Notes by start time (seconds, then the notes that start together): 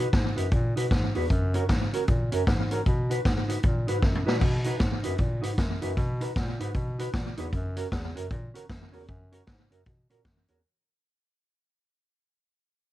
0.13 G#2, kick, snare, closed hi-hat
0.36 F#2 D#4 F#4 B4, closed hi-hat
0.51 A#2, kick, closed hi-hat
0.76 B2 D#4 F#4 B4, closed hi-hat
0.91 G#2, kick, snare, closed hi-hat
1.15 E2 D#4 F#4 B4, open hi-hat
1.30 F#2, kick, closed hi-hat
1.54 C#4 F#4 A#4, closed hi-hat
1.69 G#2, kick, snare, closed hi-hat
1.93 C#4 F#4 A#4, closed hi-hat
2.08 A#2, kick, closed hi-hat
2.32 F#2 C#4 F#4 A#4, closed hi-hat
2.47 G#2, kick, snare, closed hi-hat
2.71 C#4 F#4 A#4, closed hi-hat
2.86 B2, kick, closed hi-hat
3.09 D#4 F#4 B4, closed hi-hat
3.25 G#2, kick, snare, closed hi-hat
3.48 D#4 F#4 B4, closed hi-hat
3.63 A#2, kick, closed hi-hat
3.87 G#2 D#4 F#4 B4, closed hi-hat
4.02 F#2, muted clean electric guitar stroke, kick, snare
4.15 mid tom
4.26 A#2 D#4 F#4 B4, snare
4.41 B2, kick, crash
4.64 D#4 F#4 B4, closed hi-hat
4.80 G#2, kick, snare, closed hi-hat
5.03 F#2 D#4 F#4 B4, closed hi-hat
5.18 A#2, kick, closed hi-hat
5.42 G#2 D#4 F#4 B4, closed hi-hat
5.57 F#2, muted clean electric guitar stroke, kick, snare, closed hi-hat
5.82 F#2 D#4 F#4 B4, closed hi-hat
5.97 B2, kick, closed hi-hat
6.21 D#4 F#4 B4, closed hi-hat
6.36 A#2, kick, snare, closed hi-hat
6.59 G#2 D#4 F#4 B4, closed hi-hat
6.74 B2, kick, closed hi-hat
6.99 D#4 F#4 B4, closed hi-hat
7.14 A#2, kick, snare, closed hi-hat
7.37 E2 D#4 F#4 B4, closed hi-hat
7.53 F#2, kick, closed hi-hat
7.76 C#4 F#4 A#4, closed hi-hat
7.92 E2, kick, snare, closed hi-hat
8.15 F#2 C#4 F#4 A#4, closed hi-hat
8.31 A#2, kick, closed hi-hat
8.54 C#4 F#4 A#4, closed hi-hat
8.69 F#2, muted clean electric guitar stroke, kick, snare, closed hi-hat
8.92 E2 C#4 F#4 A#4, open hi-hat
9.09 F#2, kick, closed hi-hat
9.32 C#4 F#4 A#4, closed hi-hat
9.47 G#2, kick, snare, closed hi-hat
9.70 F#2 C#4 F#4 A#4, closed hi-hat
9.86 B2, kick, closed hi-hat
10.10 A#2 C#4 F#4 A#4, closed hi-hat
10.25 F#2, kick, snare, closed hi-hat
10.48 E2 C#4 F#4 A#4, closed hi-hat